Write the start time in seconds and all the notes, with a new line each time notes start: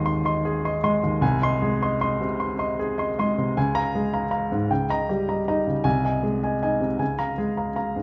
Already playing: G#1 D#2 G#3 G#4 D#5 G#5 C6
0.06 C6
0.25 D#5 C6
0.45 G#4
0.65 D#5 C6
0.83 G#3 D#5 C6
1.03 D#2
1.21 C2 G#5
1.42 D#5 C6
1.62 G#3 G#4
1.82 D#5 C6
2.01 D#5 C6
2.21 C3
2.40 C6
2.59 D#5 C6
2.79 G#4
2.98 D#5 C6
3.19 G#3 D#5 C6
3.38 C3
3.57 C#2 G#5
3.75 F5 A#5
3.95 G#3 G#4
4.13 F5 A#5
4.31 F5 A#5
4.52 G#2
4.70 C#2 G5
4.90 D#5 A#5
5.09 G3 G4
5.28 D#5 A#5
5.48 D#4 D#5 A#5
5.67 C#3
5.84 C2 G#5
6.04 D#5 G#5
6.23 G#3 G#4
6.43 D#5 G#5
6.62 D#4 D#5 G#5
6.80 C3
6.99 C#2 G#5
7.19 F5 A#5
7.38 G#3 G#4
7.57 F5 A#5
7.76 F5 A#5
7.96 G#2